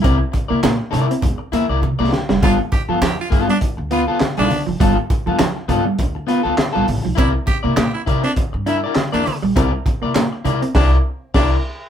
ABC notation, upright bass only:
X:1
M:4/4
L:1/16
Q:"Swing 16ths" 1/4=101
K:C
V:1 name="Upright bass" clef=bass
C,, z2 C, _B,, z C, z E,, z E,, C,, C, C,, z F,,, | G,,, z2 G,, F,, z G,, z2 D,,2 z2 B,,, z F,,, | G,,, z2 G,, F,, z G,, z D,,2 z D,, z _B,,, A,,, =B,,, | C,, z2 C, _B,, z C, z2 G,,2 z2 E,, z _B,,, |
C,, z2 C, _B,, z C, z C,,2 z2 C,,2 z2 |]